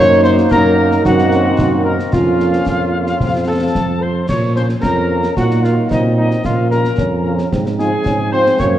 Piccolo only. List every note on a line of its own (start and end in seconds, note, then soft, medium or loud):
0.24 0.30 C6 medium
0.51 1.01 A#5 loud
1.06 1.82 F#5 medium
1.86 1.93 A#5 medium
2.14 3.50 F5 medium
3.49 4.04 A5 medium
4.02 4.29 C6 medium
4.29 4.35 C#6 medium
4.56 4.62 C6 medium
4.84 5.40 A#5 medium
5.38 5.66 F#5 medium
5.64 5.91 F5 medium
5.92 6.16 D#5 medium
6.18 6.47 D#5 medium
6.46 6.71 F5 medium
6.72 7.48 A#5 medium
7.79 8.34 G#5 medium
8.33 8.59 C6 medium
8.59 8.66 C#6 medium